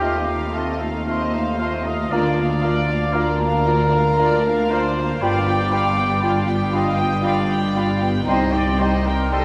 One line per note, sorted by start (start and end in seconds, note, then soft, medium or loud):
0.00 2.07 D#2 medium
0.00 0.18 A3 medium
0.00 0.26 C4 medium
0.00 0.24 F4 soft
0.00 0.17 F4 medium
0.00 0.53 G4 loud
0.00 0.24 D#5 soft
0.00 0.17 F5 medium
0.05 0.16 C6 soft
0.26 0.54 A3 medium
0.26 0.53 D#4 soft
0.26 0.54 F5 medium
0.51 0.80 C4 soft
0.51 0.79 F4 medium
0.51 0.70 F4 medium
0.51 0.90 A4 medium
0.51 0.81 D#5 soft
0.51 0.70 F5 soft
0.51 0.67 C6 soft
0.56 0.72 A3 medium
0.78 1.07 A3 medium
0.78 1.06 D#4 medium
0.82 1.08 F5 medium
1.05 1.25 A3 soft
1.05 1.32 C4 medium
1.05 1.31 F4 medium
1.05 1.23 F4 medium
1.05 1.84 C5 medium
1.05 1.23 F5 medium
1.10 1.34 D#5 soft
1.10 1.22 C6 medium
1.32 1.60 A3 soft
1.32 1.59 D#4 medium
1.36 1.61 F5 medium
1.57 1.85 C4 medium
1.57 1.84 F4 soft
1.57 1.75 F4 medium
1.57 1.75 F5 medium
1.61 1.78 A3 medium
1.61 1.87 D#5 soft
1.61 1.72 C6 medium
1.83 2.11 A3 medium
1.83 2.10 D#4 medium
1.83 2.11 D#5 medium
1.90 2.13 F5 soft
2.10 5.22 D2 medium
2.10 2.51 A#3 medium
2.10 2.29 A#3 medium
2.10 2.36 D4 medium
2.10 2.34 F4 medium
2.10 2.51 F4 medium
2.10 2.30 F4 medium
2.10 3.13 D5 loud
2.10 2.26 F5 medium
2.10 2.23 A#5 medium
2.14 2.36 D5 medium
2.36 2.63 A#3 medium
2.36 2.62 D4 medium
2.40 2.64 F5 medium
2.61 2.80 A#3 medium
2.61 2.88 D4 medium
2.61 2.87 F4 medium
2.61 2.78 F5 medium
2.61 2.75 A#5 medium
2.65 2.81 F4 soft
2.65 2.89 D5 medium
2.87 3.14 A#3 medium
2.87 3.13 D4 medium
2.92 3.16 F5 medium
3.12 3.31 A#3 medium
3.12 3.38 D4 medium
3.12 3.37 F4 medium
3.12 3.30 F4 medium
3.12 4.70 A#4 loud
3.12 3.28 F5 medium
3.12 3.24 A#5 soft
3.18 3.40 D5 soft
3.39 3.65 A#3 medium
3.39 3.65 D4 medium
3.45 3.68 F5 medium
3.63 3.92 D4 medium
3.63 3.90 F4 medium
3.63 3.82 F4 medium
3.63 3.82 F5 medium
3.63 3.77 A#5 soft
3.67 3.84 A#3 medium
3.67 3.92 D5 soft
3.89 4.18 A#3 medium
3.89 4.16 D4 medium
3.95 4.19 F5 medium
4.13 4.40 F4 medium
4.13 4.28 A#5 medium
4.18 4.35 A#3 medium
4.18 4.42 D4 medium
4.18 4.36 F4 medium
4.18 4.44 D5 medium
4.18 4.36 F5 medium
4.39 4.68 D4 medium
4.45 4.71 A#3 medium
4.45 4.72 F5 medium
4.66 4.96 D4 medium
4.66 4.94 F4 soft
4.66 4.86 F4 medium
4.70 4.87 A#3 medium
4.70 5.21 C5 loud
4.70 4.98 D5 medium
4.70 4.89 F5 medium
4.70 4.82 A#5 medium
4.95 5.21 A#3 medium
4.95 5.21 D4 medium
5.01 5.24 F5 medium
5.18 8.24 G2 medium
5.18 5.38 G3 medium
5.18 5.60 B3 medium
5.18 5.44 D4 medium
5.18 5.43 F4 medium
5.18 5.60 F4 medium
5.18 6.74 D5 loud
5.18 5.33 B5 medium
5.23 8.25 G1 medium
5.23 5.40 F4 medium
5.23 5.47 F5 medium
5.23 5.39 G5 medium
5.44 5.71 B3 medium
5.44 5.70 G4 medium
5.51 5.74 G5 medium
5.70 5.89 G3 medium
5.70 5.97 D4 medium
5.70 5.96 F4 medium
5.70 5.90 F4 medium
5.70 5.88 G5 medium
5.70 5.82 B5 medium
5.74 5.98 F5 medium
5.96 6.22 B3 medium
5.96 6.21 G4 medium
5.96 6.23 G5 medium
6.20 6.40 G3 medium
6.20 6.46 D4 medium
6.20 6.45 F4 medium
6.20 6.39 F4 medium
6.20 6.46 F5 medium
6.20 6.38 G5 medium
6.20 6.32 B5 medium
6.44 6.72 G4 medium
6.44 6.74 G5 medium
6.49 6.74 B3 medium
6.70 7.00 D4 medium
6.70 6.98 F4 medium
6.70 6.90 F4 medium
6.70 7.24 D#5 medium
6.70 6.99 F5 medium
6.70 6.85 B5 medium
6.75 6.91 G3 medium
6.75 6.91 G5 medium
6.96 7.25 B3 medium
6.96 7.24 G4 medium
6.96 7.24 G5 medium
7.23 7.42 G3 soft
7.23 7.50 D4 medium
7.23 7.39 F4 medium
7.23 7.49 F4 medium
7.23 8.10 D5 medium
7.23 7.49 F5 medium
7.23 7.40 G5 medium
7.23 7.36 B5 medium
7.48 7.77 B3 medium
7.48 7.75 G4 medium
7.48 7.76 G5 medium
7.75 7.94 G3 medium
7.75 8.02 D4 medium
7.75 8.01 F4 medium
7.75 7.91 F4 medium
7.75 8.02 F5 medium
7.75 7.92 G5 medium
7.75 7.88 B5 medium
7.99 8.28 B3 medium
7.99 8.26 G4 medium
7.99 8.28 G5 medium
8.24 8.51 G3 medium
8.24 8.68 C4 medium
8.24 8.49 D#4 medium
8.24 8.41 D#4 medium
8.24 8.52 C5 medium
8.24 8.39 C6 medium
8.28 9.45 C2 medium
8.28 8.45 G3 medium
8.28 8.68 D#4 medium
8.28 8.52 D#5 medium
8.28 8.45 G5 medium
8.50 8.80 C4 medium
8.50 8.78 G4 medium
8.50 8.78 D5 medium
8.54 8.80 G5 medium
8.76 8.95 G3 medium
8.76 9.05 G3 medium
8.76 9.04 D#4 medium
8.76 8.93 D#4 soft
8.76 9.05 C5 medium
8.76 8.91 C6 medium
8.81 9.06 D#5 medium
8.81 8.97 G5 medium
9.02 9.32 C4 medium
9.02 9.30 G4 medium
9.02 9.32 A#4 medium
9.08 9.33 G5 medium
9.29 9.45 G3 medium
9.29 9.45 D#4 medium
9.29 9.45 A4 loud
9.29 9.45 G5 medium
9.29 9.43 C6 medium
9.34 9.45 D#5 medium